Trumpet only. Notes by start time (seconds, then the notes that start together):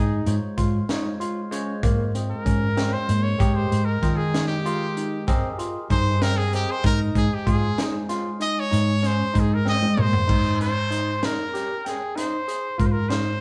Already playing: G#4
2.30 A#4
2.93 C5
3.23 C#5
3.55 C5
3.85 A#4
4.16 G#4
4.48 G4
5.91 C5
6.22 A#4
6.37 G#4
6.55 G4
6.71 C5
6.86 A#4
7.18 G#4
7.34 G4
7.51 G#4
8.42 D#5
8.60 C#5
9.07 C5
9.39 G#4
9.54 A#4
9.69 D#5
10.01 C5
10.62 C5
11.25 A#4
11.88 G#4
12.16 C5
12.80 A#4
12.86 C5
12.92 A#4
13.09 C5